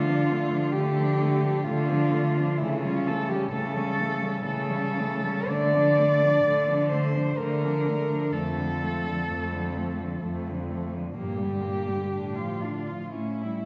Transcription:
cello
Already playing: D3 A3 F4
0.03 F3
0.09 D4
0.26 D3
0.31 A3
0.50 F3 D4
0.72 D3 A3 G4
0.76 D3
0.97 F3 D4
1.21 D3 A3
1.43 F3 D4
1.64 D3 F4
1.68 D3 A3
1.90 F3 D4
2.13 D3 A3
2.37 F3 D4
2.58 C#3 E3 E4
2.62 A3
2.82 G3 F4
2.87 C#4
3.07 E3 A3 A4
3.29 G3 C#4 G4
3.52 C#3 E3 A3 A4
3.75 G3 C#4
3.98 E3 A3
4.20 G3 C#4
4.44 C#3 E3 A3 A4
4.69 G3 C#4
4.97 E3 A3
5.23 G3 C#4
5.47 D3 A3 D5
5.74 F3 D4
5.97 D3 A3
6.22 F3 D4
6.44 D3 A3
6.68 F3 D4
6.89 D3 A3 C5
7.14 F3 D4
7.37 D3 A3 A#4
7.63 F3 D4
7.87 D3 A3
8.10 F3 D4
8.33 F2 F3 A3 A4
8.57 D3 F3
8.81 F3 A3
9.05 D3 F3
9.29 F2 F3 A3
9.53 D3 F3
9.77 F3 A3
10.00 D3 F3
10.23 F2 F3 A3
10.47 D3 F3
10.70 F3 A3
10.93 D3 F3
11.16 G2 A#2 A#3 G4
11.38 G3
11.43 D3
11.61 A#3
11.66 A#2
11.87 D3 G3
12.12 A2 D3 D4
12.36 F3 F4
12.61 D4 F4
12.66 D3
12.87 F3 F4
13.13 A2 A3 C#4 E4
13.42 G3 E4

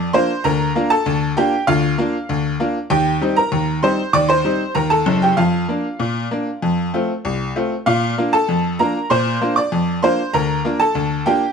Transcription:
honky-tonk piano
Already playing: D5 D6
0.13 A#3 D4 F4 C5 C6
0.44 D2 A#4 A#5
0.75 A#3 D4 F4
0.90 A4 A5
1.06 D2
1.37 A#3 D4 F4 G4 G5
1.67 D2 F4 F5
1.98 A#3 D4 F4
2.29 D2
2.60 A#3 D4 F4
2.90 D#2 G4 G5
3.21 G3 C4 D#4
3.37 A#4 A#5
3.52 D#2
3.82 G3 C4 D#4 C5 C6
4.13 D#2 D5 D6
4.28 C5 C6
4.45 G3 C4 D#4
4.75 D#2 A#4 A#5
4.90 A4 A5
5.06 F#1 F#2
5.22 G4 G5
5.37 F2 F4 F5
5.69 A#3 D4
6.00 A#2
6.31 A#3 D4
6.62 F2
6.94 A3 C4 F4
7.25 C2
7.56 A3 C4 F4
7.86 A#2 F4 F5
8.18 A#3 D4 F4
8.33 A4 A5
8.49 F2
8.79 A#3 D4 F4 A#4 A#5
9.10 A#2 C5 C6
9.41 A#3 D4 F4
9.56 D5 D6
9.72 F2
10.02 A#3 D4 F4 C5 C6
10.33 D2 A#4 A#5
10.65 A#3 D4 F4
10.80 A4 A5
10.95 D2
11.26 A#3 D4 F4 G4 G5

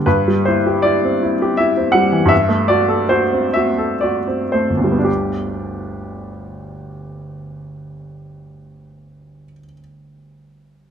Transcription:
grand piano
0.06 G2 B4
0.28 G3
0.45 E4 C5
0.66 G4
0.82 E4 D5
1.05 C4
1.23 E4
1.42 G4
1.57 E4 E5
1.77 C4
1.92 G3 F#5
2.12 E3
2.26 G2 E5
2.49 A3
2.68 F#4 D5
2.89 A4
3.09 F#4 C5
3.33 C4
3.53 F#4 E5
3.78 A4
4.01 F#4 D5
4.27 C4
4.52 A3 C5
4.70 G1
4.77 D2 D3
4.84 G3
4.92 B3
4.99 D4
5.04 G4

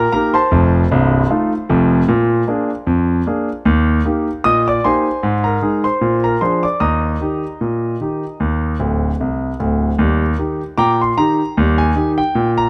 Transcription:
grand piano
Already playing: A#4 A#5
0.12 A#3 D#4 G4 A#4 A#5
0.34 C5 A5 C6
0.51 F1 F2
0.92 C1 C2
1.30 A3 D#4 F4
1.70 F1 F2
2.08 A#2
2.48 A#3 D4 G#4
2.87 F2
3.27 A#3 D4 G#4
3.65 D#2
4.05 A#3 D#4 G4
4.44 A#2 D#5 D#6
4.68 D5 D6
4.84 A#3 D#4 G4 C5 G#5 C6
5.23 G#2
5.44 A#4 A#5
5.62 G#3 D#4 G#4
5.84 C5 C6
6.01 A#2
6.24 A#4 A#5
6.41 F3 D4 G#4 C5 C6
6.63 D5 D6
6.80 D#2 D#5 A#5 D#6
7.21 D#3 D#4 G4
7.61 A#2
8.01 D#3 D#4 G4
8.40 D#2
8.79 D1 D2
9.20 C2
9.60 D1 D2
9.99 D#2 G3
10.38 D#3 D#4 G4
10.78 A#2 G5 A#5 D6
11.02 C6
11.18 D#3 D#4 G4 A#5
11.57 D#2 G3
11.78 G#5
11.96 D#3 D#4 G4
12.18 G5
12.35 A#2
12.58 A#5

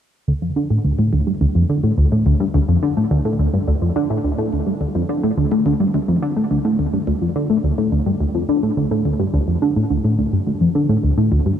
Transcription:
synth arpeggio sound
0.28 D2
0.42 F2
0.56 D3
0.70 A2
0.84 D2
0.99 A2
1.13 D2
1.27 G2
1.41 D2
1.55 F2
1.70 D3
1.84 A2
1.98 D2
2.12 A2
2.26 D2
2.40 G2
2.54 D2
2.68 F2
2.83 D3
2.97 A2
3.11 D2
3.25 A2
3.39 D2
3.54 G2
3.68 D2
3.82 F2
3.96 D3
4.10 A2
4.24 D2
4.38 A2
4.53 D2
4.67 G2
4.81 D2
4.95 F2
5.09 D3
5.23 A2
5.37 D2
5.52 A2
5.66 D2
5.80 G2
5.94 D2
6.08 F2
6.22 D3
6.36 A2
6.51 D2
6.65 A2
6.79 D2
6.93 G2
7.07 D2
7.22 F2
7.36 D3
7.50 A2
7.64 D2
7.78 A2
7.92 D2
8.06 G2
8.20 D2
8.35 F2
8.49 D3
8.63 A2
8.77 D2
8.91 A2
9.05 D2
9.20 G2
9.34 D2
9.48 F2
9.62 D3
9.76 A2
9.90 D2
10.04 A2
10.19 D2
10.33 G2
10.47 D2
10.61 F2
10.75 D3
10.89 A2
11.03 D2
11.18 A2
11.32 D2
11.46 G2

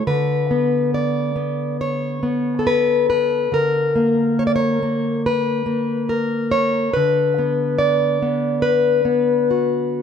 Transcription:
steel-string acoustic guitar
0.07 D3 B4
0.51 B3
0.94 D5
1.36 B3
1.81 C#5
2.23 B3
2.59 A4
2.67 B4
3.10 B4
3.52 D3 A#4
3.96 A#3
4.39 C#5
4.47 D5
4.56 C#5
4.83 A#3
5.26 B4
5.66 A#3
6.09 A#4
6.51 C#5
6.93 D3 B4
7.38 B3
7.79 D5
8.22 B3
8.62 B4
9.05 B3
9.51 F#4

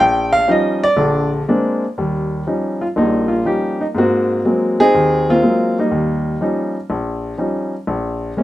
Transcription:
grand piano
0.00 A#1 G5
0.33 F5
0.48 F3 G3 C#4 D#4 D#5
0.84 D5
0.96 A#1 D3
1.48 G#3 A#3 C4 D4
1.98 D#2 G3
2.47 F3 G3 C#4 D#4
2.81 F4
2.96 A#1 A#2 G3 A#3 D#4
3.28 F4
3.45 F3 G3 C#4 D#4 G4
3.81 D#4
3.95 G#2 A#3 C4 F#4
4.45 F#3 G#3 A#3 C4
4.80 C4 D#4 G#4
4.94 D#2
5.30 A#3 C4 F4
5.43 F#3 G#3 A#3 C4
5.79 G3 A#3 D#4
5.91 D#2
6.41 F3 G3 C#4 D#4
6.90 A#1
7.38 F3 G3 C#4 D#4
7.87 A#1
8.37 G#3 A#3 C#4

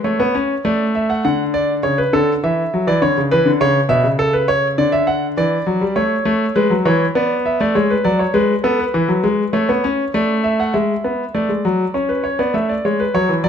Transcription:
grand piano
0.04 A3 C#5
0.20 B3
0.35 C#4
0.65 A3 D5
0.95 E5
1.10 F#5
1.25 D3 F#5
1.54 D5
1.83 C#3 C#5
1.98 B4
2.13 D3 A4
2.44 E3 E5
2.74 F#3
2.87 E3 D5
3.02 D3 C#5
3.17 C#3
3.31 E3 B4
3.46 D3
3.61 C#3 C#5
3.89 B2 E5
4.04 C#3
4.19 A4
4.33 B4
4.48 C#5
4.78 D3 D5
4.92 E5
5.07 F#5
5.37 E3 D5
5.67 F#3
5.81 G3
5.96 A3 C#5
6.25 A3
6.56 G#3 B4
6.70 F#3
6.85 E3 C#5
7.15 B3 D5
7.46 E5
7.60 A3 D5
7.75 G#3 C#5
7.90 B4
8.04 F#3 D5
8.19 C#5
8.34 G#3 B4
8.64 B3 A4
8.79 B4
8.94 E3
9.08 F#3
9.24 G#3
9.53 A3 C#5
9.69 B3
9.84 C#4
10.14 A3 D5
10.44 E5
10.60 F#5
10.74 G#3 E5
11.04 B3
11.35 A3 D5
11.49 G#3
11.65 F#3
11.94 C#4 C#5
12.09 B4
12.24 C#5
12.39 B3 D5
12.54 A3 E5
12.69 D5
12.85 G#3 C#5
13.00 B4
13.14 F#3 C#5
13.29 E3
13.44 F#3 D5

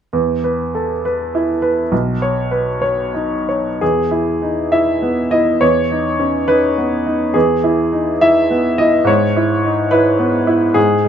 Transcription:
upright piano
0.13 E2
0.44 B4
0.75 A4
1.05 B4
1.35 E4
1.62 B4
1.92 B1
2.22 C#5
2.51 B4
2.82 C#5
3.14 D#4
3.49 C#5
3.81 E2 G#4
4.11 E4
4.42 D#4
4.72 E4 E5
5.02 B3
5.31 E4 D#5
5.61 E2 C#5
5.91 D#4
6.19 C#4
6.48 D#4 B4
6.78 B3
7.07 D#4
7.34 E2 G#4
7.64 E4
7.93 D#4
8.21 E4 E5
8.51 B3
8.78 E4 D#5
9.05 G#2 C#5
9.37 E4
9.65 D#4
9.91 E4 B4
10.19 B3
10.47 E4
10.74 G#2 G#4
11.05 G#3

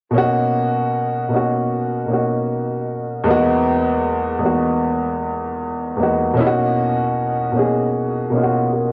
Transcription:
upright piano
0.11 B2 A#3 C#4
0.16 D#4 F#4
1.29 B2 A#3 C#4
1.34 D#4 F#4
2.06 B2 A#3 C#4
2.11 D#4 F#4
3.23 E2 G#3 A#3
3.27 B3 D#4 F#4
4.39 E2 G#3 A#3
4.43 B3 D#4 F#4
5.97 E2 G#3 A#3 B3
6.02 D#4 F#4
6.34 B2 A#3 C#4
6.39 D#4 E4
6.47 F#4
7.52 B2 A#3 C#4
7.57 D#4 G#4
8.30 B2 A#3 C#4
8.35 D#4 F4
8.43 F#4
8.73 F#4 A#4

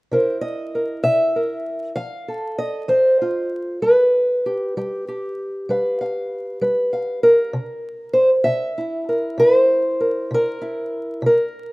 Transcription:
steel-string acoustic guitar
0.11 C3 E4 A#4 C5
0.41 D#5
0.75 A#4
1.04 C3 E5
1.36 A#4
1.96 F3 F5
2.28 A4
2.58 D#5
2.88 F3 C5
3.22 F4
3.82 G3 B4
4.46 G4
4.77 G3 G4
5.08 G4
5.69 G3 B4 F5
6.01 F5
6.61 G3 B4
6.93 F5
7.23 A#4
7.53 C3
8.13 C5
8.44 C3 E5
8.78 E4
9.09 A#4
9.38 C3 B4
9.57 C5
10.00 A#4
10.31 C3 A#4
10.61 E4
11.22 C3
11.26 A#4

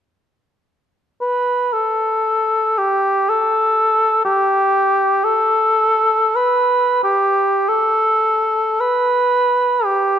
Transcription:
cor anglais
1.21 B4
1.73 A4
2.78 G4
3.29 A4
4.25 G4
5.24 A4
6.36 B4
7.04 G4
7.69 A4
8.80 B4
9.85 G4

